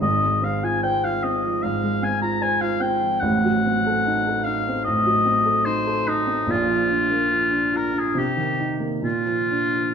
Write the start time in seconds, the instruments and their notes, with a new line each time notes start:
0.01 grand piano G#1 G#2, oboe D#5
0.23 grand piano G#3
0.42 grand piano C4, oboe F5
0.63 grand piano F4, oboe G#5
0.83 grand piano C5, oboe G5
1.04 grand piano F4, oboe F5
1.23 grand piano C4, oboe D#5
1.44 grand piano F3
1.63 grand piano G#2, oboe F5
1.83 grand piano G#3
2.02 grand piano C4, oboe G#5
2.22 grand piano F4, oboe A#5
2.42 grand piano C5, oboe G#5
2.61 grand piano F4, oboe F5
2.80 grand piano C4, oboe G5
3.02 grand piano F3
3.20 grand piano A1 A2, oboe F#5
3.45 grand piano F#3
3.66 grand piano C4
3.87 grand piano A4
4.06 grand piano D#4
4.27 grand piano A4
4.44 grand piano D#4, oboe F5
4.68 grand piano C4
4.84 grand piano A2, oboe D#5
5.06 grand piano F#3
5.25 grand piano C4
5.46 grand piano A4
5.65 grand piano D#4, oboe C5
5.87 grand piano A4
6.07 grand piano D#4, oboe D#4
6.27 grand piano C4
6.47 grand piano A#1 A#2, oboe F4
6.67 grand piano F3
6.90 grand piano D4
7.10 grand piano A#3
7.30 grand piano F3
7.51 grand piano D4
7.72 grand piano F4
7.76 oboe A#4
7.93 grand piano D4
7.99 oboe G#4
8.15 grand piano C3, oboe G4
8.37 grand piano D#3
8.60 grand piano D#4
8.79 grand piano A#3
9.02 grand piano A#2, oboe F4
9.26 grand piano F3
9.51 grand piano D4
9.75 grand piano F3